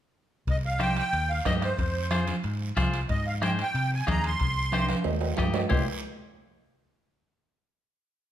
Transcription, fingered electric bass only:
0.47 1.00 C2 medium
1.13 1.39 D#2 medium
1.46 1.72 G2 medium
1.79 2.31 F2 medium
2.44 2.70 G#2 medium
2.77 3.03 C2 medium
3.09 3.62 G#2 loud
3.74 4.01 C3 medium
4.08 4.34 D#2 medium
4.41 4.93 C2 medium
5.05 5.31 D#2 medium
5.38 5.64 G2 medium
5.71 5.86 C2 medium

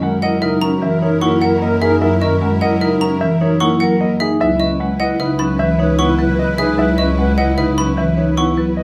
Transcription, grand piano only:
0.03 0.29 F#5 medium
0.23 0.48 D#5 medium
0.42 0.68 A#4 medium
0.83 1.08 E5 medium
1.03 1.28 C#5 medium
1.22 1.48 F#5 medium
1.62 1.88 D#5 medium
1.82 2.07 G#4 medium
2.02 2.27 E5 medium
2.42 2.67 F#5 medium
2.62 2.87 D#5 loud
2.81 3.07 A#4 medium
3.21 3.47 E5 medium
3.41 3.67 C#5 medium
3.61 3.86 F#5 medium
4.01 4.26 D#5 medium
4.21 4.46 G#4 medium
4.41 4.66 E5 loud
4.80 5.06 F#5 medium
5.00 5.25 D#5 loud
5.20 5.45 B4 medium
5.59 5.85 E5 loud
5.79 6.05 C#5 medium
5.99 6.25 F#5 medium
6.39 6.65 D#5 medium
6.59 6.84 G#4 medium
6.79 7.04 E5 loud
7.19 7.44 F#5 medium
7.38 7.64 D#5 medium
7.58 7.84 B4 medium
7.98 8.23 E5 medium
8.17 8.43 C#5 medium
8.38 8.63 F#5 medium
8.77 8.83 D#5 medium

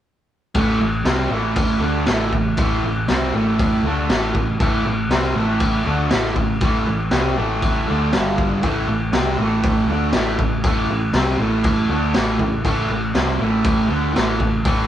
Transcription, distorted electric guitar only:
0.55 0.79 A2 loud
0.55 0.79 E3 loud
0.55 0.81 A3 medium
0.80 1.01 A2 medium
0.80 1.01 E3 medium
1.05 1.30 C3 medium
1.05 1.31 G3 medium
1.05 1.32 C4 loud
1.31 1.81 A2 medium
1.31 1.82 E3 medium
1.31 1.81 A3 loud
1.81 2.06 D3 loud
1.81 2.07 A3 medium
1.81 2.08 D4 loud
2.07 2.31 A2 medium
2.07 2.31 E3 loud
2.07 2.33 A3 loud
2.33 2.53 A2 medium
2.33 2.53 E3 medium
2.58 2.83 A2 loud
2.58 2.84 E3 loud
2.58 2.84 A3 loud
2.86 3.05 A2 medium
2.86 3.05 E3 medium
3.09 3.34 C3 medium
3.09 3.34 G3 medium
3.09 3.35 C4 loud
3.34 3.84 A2 medium
3.34 3.85 E3 loud
3.34 3.85 A3 loud
3.85 4.10 D3 medium
3.85 4.10 A3 loud
3.85 4.10 D4 loud
4.10 4.35 A2 medium
4.10 4.35 E3 loud
4.10 4.35 A3 medium
4.37 4.56 A2 medium
4.37 4.56 E3 medium
4.60 4.85 A2 loud
4.60 4.86 E3 loud
4.60 4.86 A3 loud
4.86 5.06 A2 medium
4.86 5.07 E3 medium
5.11 5.35 C3 loud
5.11 5.36 G3 medium
5.11 5.36 C4 loud
5.36 5.85 A2 loud
5.36 5.86 E3 loud
5.36 5.86 A3 loud
5.86 6.09 D3 medium
5.86 6.11 A3 loud
5.86 6.11 D4 loud
6.10 6.35 A2 medium
6.10 6.35 E3 loud
6.10 6.36 A3 loud
6.36 6.57 A2 medium
6.36 6.57 E3 medium
6.61 6.86 A2 loud
6.61 6.86 E3 loud
6.61 6.87 A3 loud
6.87 7.07 A2 medium
6.87 7.07 E3 medium
7.11 7.35 C3 medium
7.11 7.37 G3 medium
7.11 7.37 C4 medium
7.36 7.86 A2 medium
7.36 7.87 E3 medium
7.36 7.87 A3 loud
7.87 8.12 D3 loud
7.87 8.13 A3 loud
7.87 8.13 D4 loud
8.11 8.62 G2 medium
8.11 8.62 D3 medium
8.11 8.63 G3 loud
8.62 8.87 A2 medium
8.62 8.87 E3 loud
8.62 8.88 A3 loud
8.89 9.09 A2 medium
8.89 9.09 E3 medium
9.12 9.37 C3 medium
9.12 9.38 G3 loud
9.12 9.38 C4 medium
9.39 9.88 A2 medium
9.39 9.89 E3 medium
9.39 9.89 A3 medium
9.89 10.13 D3 medium
9.89 10.14 A3 medium
9.89 10.14 D4 loud
10.14 10.38 A2 loud
10.14 10.38 E3 loud
10.14 10.39 A3 medium
10.40 10.60 A2 medium
10.40 10.60 E3 medium
10.65 10.89 A2 loud
10.65 10.89 E3 medium
10.65 10.90 A3 loud
10.91 11.10 A2 medium
10.91 11.10 E3 medium
11.15 11.39 C3 medium
11.15 11.39 G3 medium
11.15 11.40 C4 loud
11.39 11.89 A2 medium
11.39 11.89 E3 medium
11.39 11.89 A3 loud
11.90 12.14 D3 medium
11.90 12.14 A3 loud
11.90 12.15 D4 loud
12.14 12.38 A2 medium
12.14 12.39 E3 loud
12.14 12.40 A3 loud
12.40 12.60 A2 medium
12.40 12.60 E3 medium
12.64 12.89 A2 loud
12.64 12.89 E3 loud
12.64 12.90 A3 loud
12.91 13.11 A2 medium
12.91 13.11 E3 medium
13.14 13.39 C3 medium
13.14 13.39 G3 medium
13.14 13.40 C4 loud
13.40 13.88 A2 loud
13.40 13.89 E3 medium
13.40 13.88 A3 medium
13.89 14.12 D3 medium
13.89 14.14 A3 loud
13.89 14.15 D4 loud
14.13 14.38 A2 medium
14.13 14.38 E3 loud
14.13 14.40 A3 loud
14.39 14.60 A2 medium
14.39 14.60 E3 medium
14.65 14.87 A2 medium
14.65 14.87 E3 loud
14.65 14.87 A3 loud

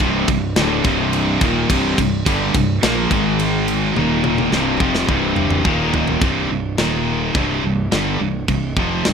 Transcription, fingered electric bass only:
0.00 0.26 C1 loud
0.28 0.55 C1 medium
0.57 0.83 D1 loud
0.85 1.38 C1 loud
1.41 1.68 D#1 medium
1.70 1.96 C1 loud
1.98 2.25 C1 medium
2.26 2.52 G1 loud
2.54 2.81 C1 medium
2.84 3.09 A#1 loud
3.11 3.92 G#1 loud
3.97 4.49 D#1 loud
4.53 4.79 C1 loud
4.80 5.07 F1 medium
5.09 5.61 C1 loud
5.65 6.18 D#1 medium
6.21 6.48 C1 medium
6.51 6.77 C1 medium
6.79 7.31 D#1 loud
7.35 7.61 C1 loud
7.64 7.90 C1 medium
7.93 8.19 G1 medium
8.21 8.47 C1 medium
8.49 8.75 C1 medium
8.77 9.03 F1 loud
9.06 9.13 C1 medium

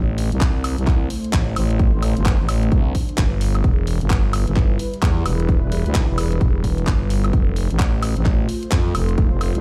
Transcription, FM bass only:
0.00 0.30 A1 loud
0.32 0.76 C2 loud
0.78 1.09 C2 loud
1.33 1.55 A1 loud
1.56 1.91 A1 loud
1.94 2.14 A1 loud
2.17 2.38 G1 loud
2.40 2.70 A1 loud
2.72 2.93 C2 loud
3.18 3.63 G1 loud
3.64 3.99 E1 loud
4.01 4.45 G1 loud
4.47 4.78 G1 loud
5.03 5.24 E2 loud
5.26 5.61 E1 loud
5.63 5.84 E1 medium
5.86 6.07 D2 loud
6.09 6.40 E1 loud
6.41 6.86 E1 loud
6.87 7.32 G1 loud
7.33 7.68 F1 loud
7.71 8.15 A1 loud
8.17 8.47 A1 loud
8.72 8.93 F2 loud
8.95 9.30 F1 loud
9.32 9.53 F1 loud
9.55 9.61 C2 loud

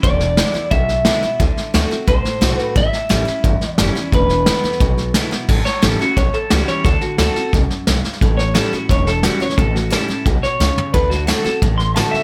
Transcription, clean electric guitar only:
0.03 0.67 D5 loud
0.71 2.04 E5 loud
2.08 2.57 C5 medium
2.57 2.77 B4 medium
2.77 3.71 E5 loud
3.71 4.14 D5 loud
4.14 5.29 B4 medium
5.65 5.82 C#5 loud
5.83 5.99 A4 medium
6.01 6.17 F#4 medium
6.17 6.33 C#5 loud
6.34 6.50 A4 medium
6.50 6.67 F#4 medium
6.68 6.85 C#5 loud
6.85 7.02 A4 medium
7.02 7.18 F#4 loud
7.18 7.52 A4 loud
8.37 8.54 C#5 loud
8.54 8.73 A4 medium
8.73 8.89 F#4 medium
8.91 9.06 C#5 medium
9.07 9.23 A4 medium
9.25 9.41 F#4 loud
9.42 9.58 C#5 loud
9.58 9.75 A4 loud
9.75 9.93 F#4 loud
9.93 10.25 A4 medium
10.43 10.92 C#5 loud
10.94 11.10 B4 loud
11.10 11.27 F#4 loud
11.27 11.43 A4 medium
11.44 11.61 A4 medium
11.78 11.95 C6 loud
11.96 12.12 A5 loud
12.11 12.23 E5 loud

